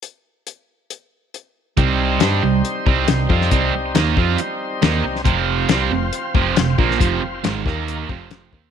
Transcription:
<<
  \new Staff \with { instrumentName = "Tonewheel organ" } { \time 4/4 \key c \minor \tempo 4 = 138 r1 | <g c' ees' c''>1~ | <g c' ees' c''>1 | <c' f' c''>1~ |
<c' f' c''>4. <bes ees' bes'>4 <c' f' c''>4. | }
  \new Staff \with { instrumentName = "Distorted electric guitar" } { \clef bass \time 4/4 \key c \minor r1 | <c g c'>4 <g d' g'>8 <c g>8 r8 <c g c'>8 <c g>8 <f c' f'>8 | <c g c'>8 r8 <ees bes ees'>8 <f c' f'>8 r4 <ees bes ees'>8 r8 | <f, c f>4 <c g c'>8 <f, c>8 r8 <f, c f>8 <f, c>8 <bes, f bes>8 |
<f, c f>8 r8 <aes, ees aes>8 <ees bes ees'>4 <f, c f>4 <ees bes ees'>8 | }
  \new Staff \with { instrumentName = "FM bass" } { \clef bass \time 4/4 \key c \minor r1 | c,4 g,8 c,8 r8 c,8 c,8 f,8 | c,8 c,8 ees,8 f,8 r4 ees,8 c,8 | f,,4 c,8 f,,8 r8 f,,8 f,,8 bes,,8 |
f,,8 f,,8 aes,,8 ees,4 f,,4 ees,8 | }
  \new DrumStaff \with { instrumentName = "Drums" } \drummode { \time 4/4 hh4 hh4 hh4 hh4 | <hh bd>4 <hh sn>4 hh8 bd8 <hh sn>8 bd16 sn16 | <hh bd>4 <hh sn>8 bd8 hh4 <hh sn>8. sn16 | <hh bd>4 <hh sn>4 hh8 bd8 <hh sn>8 bd16 sn16 |
<hh bd>4 <hh sn>8 <bd sn>8 hh8 bd8 <hh sn>8 bd8 | }
>>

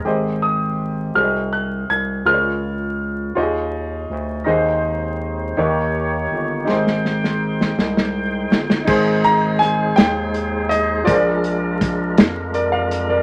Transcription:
<<
  \new Staff \with { instrumentName = "Grand piano" } { \time 6/8 \key aes \major \tempo 4. = 54 r8 ees'''4 f'''8 ges'''8 aes'''8 | f'''2~ f'''8 r8 | r2. | r2. |
r8 bes''8 aes''8 g''4 ees''8 | d''4. r4. | }
  \new Staff \with { instrumentName = "Grand piano" } { \time 6/8 \key aes \major <g' aes' c'' ees''>4. <ges' aes' c'' d'' ees''>4. | <f' aes' bes' c'' des''>4. <f' g' aes' des'' ees''>4. | <ees' aes' c'' ees''>4. <ees' g' bes' des''>4. | <ees' g' aes' c''>2. |
<ees' aes' c''>2. | <f' aes' bes' c'' d''>2. | }
  \new Staff \with { instrumentName = "Grand piano" } { \clef bass \time 6/8 \key aes \major aes,4. c4. | des4. ees'4. | ees4. ees4. | aes,4. r4. |
aes,4. r4. | bes,4. r8 <bes' d''>16 <d'' f''>8 <bes' d''>16 | }
  \new Staff \with { instrumentName = "Tonewheel organ" } { \time 6/8 \key aes \major r2. | r2. | <aes c' ees' bes' c''>4. <bes ees' g' des''>4. | <aes ees' c'' g''>2. |
<aes ees' aes' c''>2. | <aes d' f' bes'>2. | }
  \new Staff \with { instrumentName = "FM bass" } { \clef bass \time 6/8 \key aes \major aes,,4. c,4 c,8 | des,4. ees,4 d,8 | ees,4. ees,4 g,,8 | aes,,4. c,4 g,,8 |
aes,,4. ees,4. | bes,,4. f,4. | }
  \new DrumStaff \with { instrumentName = "Drums" } \drummode { \time 6/8 r4. r4. | r4. r4. | r4. r4. | sn16 sn16 sn16 sn8 sn16 sn16 sn8. sn16 sn16 |
<cymc bd>8 hh8 <hh sn>8 <hh sn>8 hh8 hh8 | <hh bd>8 hh8 <hh bd sn>8 <hh sn>8 hh8 hh8 | }
>>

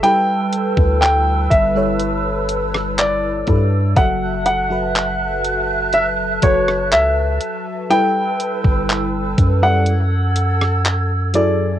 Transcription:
<<
  \new Staff \with { instrumentName = "Flute section" } { \time 4/4 \key fis \phrygian \tempo 4 = 61 << { <b' e'''>1 | <e'' fis'''>1 | <b' e'''>2 <a' e'''>2 | } \\ { a''1 | a''1~ | a''2 gis'''2 | } >> }
  \new Staff \with { instrumentName = "Grand piano" } { \time 4/4 \key fis \phrygian g''4 g''8 e''4 r8 d''4 | fis''8 fis''4. e''8 cis''8 e''4 | g''4.~ g''16 fis''4.~ fis''16 d''8 | }
  \new Staff \with { instrumentName = "FM electric piano" } { \time 4/4 \key fis \phrygian <g e' a' b'>4. r16 <g e' a' cis''>4. r16 <g e' a' b'>8 | <fis fis' a' e''>8 r16 <fis fis' a' b'>4. r16 <fis fis' a' b'>4~ <fis fis' a' b'>16 r16 | <g e' a' b'>4. r16 <g e' a' d''>16 r4. <fis e' gis' a'>8 | }
  \new Staff \with { instrumentName = "808-style bass" } { \clef bass \time 4/4 \key fis \phrygian r8. d,8. g,,2 g,8 | fis,,2~ fis,,8 fis,,8 cis,8 r8 | r8. g,,8. fis,2~ fis,8 | }
  \new DrumStaff \with { instrumentName = "Drums" } \drummode { \time 4/4 hh8 hh16 bd16 <hc hh>8 <hh bd>8 hh8 hh16 ss16 <hc hh>8 <hh bd>8 | <hh bd>8 hh8 <hc hh>8 hh8 hh8 <hh bd>16 ss16 <hc hh>8 hh8 | hh8 hh16 bd16 <hc hh>8 <hh bd>8 hh8 hh16 ss16 <hc hh>8 hh8 | }
>>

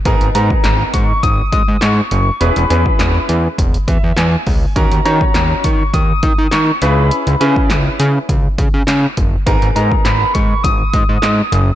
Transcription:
<<
  \new Staff \with { instrumentName = "Soft synth lead" } { \time 4/4 \key gis \minor \tempo 4 = 102 r8 ais''4 cis'''8 dis'''8 dis'''8 cis'''8 cis'''8 | b''4. r2 r8 | r8 ais''4 cis'''8 dis'''4 cis'''8 b''8~ | b''4. r2 r8 |
r8 ais''8 b''8 cis'''8 dis'''2 | }
  \new Staff \with { instrumentName = "Grand piano" } { \time 4/4 \key gis \minor <b dis' gis' ais'>8 <b dis' gis' ais'>4~ <b dis' gis' ais'>16 r2 r16 | <cis' e' gis' b'>8 <cis' e' gis' b'>4~ <cis' e' gis' b'>16 r8. e''8 gis''4 | <cis' dis' fis' ais'>8 <cis' dis' fis' cis''>4~ <cis' dis' fis' cis''>16 r4. r16 <cis' e' gis' b'>8~ | <cis' e' gis' b'>8 <cis' e' gis' b'>4~ <cis' e' gis' b'>16 r2 r16 |
<b dis' gis' ais'>8 <b dis' gis' ais'>4~ <b dis' gis' ais'>16 r2 r16 | }
  \new Staff \with { instrumentName = "Analog synth bass" } { \clef bass \time 4/4 \key gis \minor gis,,16 gis,,16 gis,8 gis,,8 gis,8 gis,,8 gis,16 gis,16 gis,8 fis,,8 | e,,16 e,,16 e,8 e,,8 e,8 e,,8 e,16 e,16 e,8 cis,8 | dis,16 dis,16 dis8 dis,8 dis8 dis,8 dis16 dis16 dis8 cis,8~ | cis,16 cis,16 cis8 cis,8 cis8 cis,8 cis16 cis16 cis8 fis,,8 |
gis,,16 gis,,16 gis,8 gis,,8 gis,8 gis,,8 gis,16 gis,16 gis,8 fis,,8 | }
  \new DrumStaff \with { instrumentName = "Drums" } \drummode { \time 4/4 <hh bd>16 hh16 hh16 bd16 <hc hh sn>8 <hh bd>8 <hh bd>8 <hh bd>8 <hc hh sn>8 hh8 | hh16 hh16 hh16 bd16 <hc hh sn>8 hh8 <hh bd>16 hh16 <hh bd>8 <hc hh sn>8 <hho bd>8 | <hh bd>16 hh16 hh16 bd16 <hc hh sn>8 <hh bd>8 <hh bd>8 <hh bd>8 <hc hh sn>8 hh8 | hh16 hh16 hh16 bd16 <hc hh sn>8 hh8 <hh bd>8 <hh bd>8 <hc hh sn>8 <hh bd>8 |
<hh bd>16 hh16 hh16 bd16 <hc hh sn>8 <hh bd>8 <hh bd>8 <hh bd>8 <hc hh sn>8 hh8 | }
>>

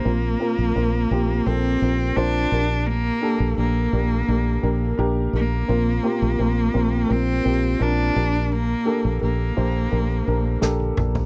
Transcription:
<<
  \new Staff \with { instrumentName = "Upright piano" } { \time 4/4 \key g \minor \tempo 4 = 85 <bes c' f' bes'>8 <bes c' f' bes'>8 <bes c' f' bes'>8 <bes c' f' g'>8 <bes c' f' a'>8 <bes c' f' bes'>8 <bes c' f' c''>8 <bes d' g' bes'>8~ | <bes d' g' bes'>8 <bes d' g' a'>8 <bes d' g' bes'>8 <bes d' g' bes'>8 <bes d' g' bes'>8 <bes d' g' bes'>8 <bes d' g' bes'>8 <bes d' g' bes'>8 | <bes c' f' bes'>8 <bes c' f' g'>8 <bes c' f' bes'>8 <bes c' f' bes'>8 <bes c' f' bes'>8 <bes c' f' g'>8 <bes c' f' bes'>8 <bes d' g' bes'>8~ | <bes d' g' bes'>8 <bes d' g' a'>8 <bes d' g' bes'>8 <bes d' g' c''>8 <bes d' g' bes'>8 <bes d' g' bes'>8 <bes d' g' a'>8 <bes d' g' a'>8 | }
  \new Staff \with { instrumentName = "Upright piano" } { \clef bass \time 4/4 \key g \minor bes,4. r2 bes,8~ | bes,4 r2. | bes,4. r2 bes,8~ | bes,4 r2. | }
  \new Staff \with { instrumentName = "Cello" } { \time 4/4 \key g \minor bes2 c'4 d'4 | bes4 bes2 r8 bes8~ | bes2 c'4 d'4 | bes4 bes2 r4 | }
  \new Staff \with { instrumentName = "Fingered electric bass" } { \clef bass \time 4/4 \key g \minor bes,,8 r16 bes,,16 bes,,8 bes,,8 bes,,8 bes,,8 bes,,8 bes,,8~ | bes,,8 r16 bes,,16 bes,,8 bes,,8 bes,,8 bes,,8 bes,,8 bes,,8 | bes,,8 r16 bes,,16 bes,,8 bes,,8 bes,,8 bes,,8 bes,,8 bes,,8~ | bes,,8 r16 bes,,16 bes,,8 bes,,8 bes,,8 bes,,8 bes,,8 bes,,8 | }
  \new DrumStaff \with { instrumentName = "Drums" } \drummode { \time 4/4 r4 r4 r4 r4 | r4 r4 r4 r4 | r4 r4 r4 r4 | r4 r4 r4 sn16 tommh16 toml16 tomfh16 | }
>>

